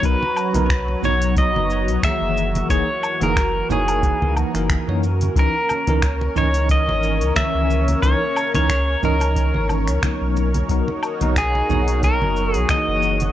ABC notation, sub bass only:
X:1
M:4/4
L:1/16
Q:"Swing 16ths" 1/4=90
K:B
V:1 name="Sub bass" clef=bass
B,,, z2 B,,,3 B,,,3 F,,,2 B,,, z F,,,3 | F,,, z2 F,,,3 F,,,3 C,, z F,,, z F,,3 | C,, z2 C,,3 C,,3 G,,,2 C,, z C,,3 | C,, z2 C,,3 C,,3 G,,,2 C,, z B,,,3 |
B,,, z2 B,,,3 B,,,3 F,,,2 B,,, z F,,,3 |]